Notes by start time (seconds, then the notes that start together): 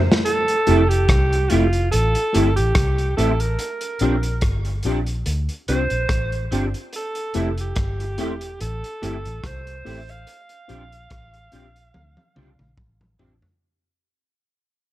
Already playing: A#4 A#5
0.12 snare
0.25 A4, closed hi-hat
0.48 closed hi-hat
0.67 F1 A3 C4 E4 G4, closed hi-hat
0.89 G4, closed hi-hat
1.09 C2, kick, cross-stick, closed hi-hat
1.32 muted clean electric guitar stroke, closed hi-hat
1.49 F1 A3 C4 E4 F4 G4, closed hi-hat
1.73 closed hi-hat
1.92 A1 A4, closed hi-hat
2.15 closed hi-hat
2.33 G1 A3 C4 E4 G4, closed hi-hat
2.56 A1 G4, closed hi-hat
2.75 C2, kick, cross-stick, closed hi-hat
2.98 closed hi-hat
3.17 A1 A3 C4 E4 G4 A4, closed hi-hat
3.40 A#4, closed hi-hat
3.59 closed hi-hat
3.81 closed hi-hat
3.99 A#1 C4 D4 F4 G4, closed hi-hat
4.23 closed hi-hat
4.41 G1, kick, cross-stick, closed hi-hat
4.65 muted clean electric guitar stroke, closed hi-hat
4.83 A#1 C4 D4 F4 G4, closed hi-hat
5.06 closed hi-hat
5.26 D2, closed hi-hat
5.49 closed hi-hat
5.68 C2 C4 D4 F4 G4 C5, closed hi-hat
5.90 A#1, closed hi-hat
6.09 A1, kick, cross-stick, closed hi-hat
6.32 closed hi-hat
6.51 G1 C4 D4 F4 G4, closed hi-hat
6.74 closed hi-hat
6.93 A4, closed hi-hat
7.15 closed hi-hat
7.34 F1 A3 C4 E4 G4, closed hi-hat
7.58 G4, closed hi-hat
7.76 G1, kick, cross-stick, closed hi-hat
8.00 muted clean electric guitar stroke, closed hi-hat
8.18 E1 A3 C4 E4 G4, closed hi-hat
8.41 closed hi-hat
8.61 A1 A4, closed hi-hat
8.84 closed hi-hat
9.02 G1 A3 C4 E4 G4, closed hi-hat
9.25 A1, closed hi-hat
9.44 C2 C5, kick, cross-stick, closed hi-hat
9.67 closed hi-hat
9.85 A1 A3 C4 E4 G4, open hi-hat
10.09 F5, closed hi-hat
10.27 closed hi-hat
10.49 closed hi-hat
10.68 A#1 C4 D4 F4 G4, closed hi-hat
10.92 closed hi-hat
11.10 A1, kick, cross-stick, closed hi-hat
11.34 muted clean electric guitar stroke, closed hi-hat
11.52 A#1 C4 D4 F4 G4, closed hi-hat
11.76 closed hi-hat
11.94 D2, high tom
12.17 high tom
12.36 C2 C4 D4 F4 G4, mid tom
12.59 A#1, mid tom
12.78 A1, kick, mid tom
13.01 mid tom
13.19 A1 C4 D4 F4 G4, floor tom
13.42 floor tom